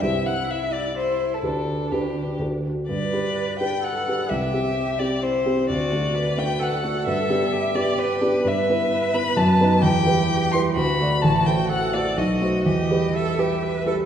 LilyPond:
<<
  \new Staff \with { instrumentName = "Violin" } { \time 3/4 \key g \major \tempo 4 = 129 e''8 fis''8 e''8 d''8 c''8. a'16 | a'4 g'4 r4 | d''4. g''8 fis''4 | e''4. d''8 c''4 |
d''4. g''8 fis''4 | e''4. d''8 b'4 | \key e \minor e''4. b''8 a''4 | g''4. c'''8 b''4 |
a''8 g''8 fis''8 d''8 dis''4 | dis''4 e''4. r8 | }
  \new Staff \with { instrumentName = "Cello" } { \time 3/4 \key g \major e'2 e'4 | d'2~ d'8 r8 | b'2 a'4 | g'2 e'4 |
fis'4 b'4 a'4~ | a'4 g'2 | \key e \minor b'2. | g'2 fis'4 |
fis'4 a'4 fis'4 | g'4 a'8 g'8 b'8 a'8 | }
  \new Staff \with { instrumentName = "Grand piano" } { \time 3/4 \key g \major <c, e' g' c''>2. | <d, d' g' b'>4 <d, d' g' b'>4 <d, d' fis' a'>4 | g,8 <d' g' b'>4 <d' g' b'>4 <d' g' b'>8 | c,8 <c' g'>4 <c' g'>4 <c' g'>8 |
d,8 <a d' fis'>4 <a d' fis'>4 <a d' fis'>8 | g,8 <b d' g'>4 <b d' g'>4 <b d' g'>8 | \key e \minor g,8 <b e' b'>4 <b e' b'>8 fis,8 <b dis' b'>8 | e,8 <g e' b'>4 <g e' b'>8 d,8 <a fis' d''>8 |
a,,8 <a fis' c''>4 <a fis' c''>8 b,,8 <a fis' c''>8 | e,8 <g g' b'>4 <g g' b'>4 <g g' b'>8 | }
>>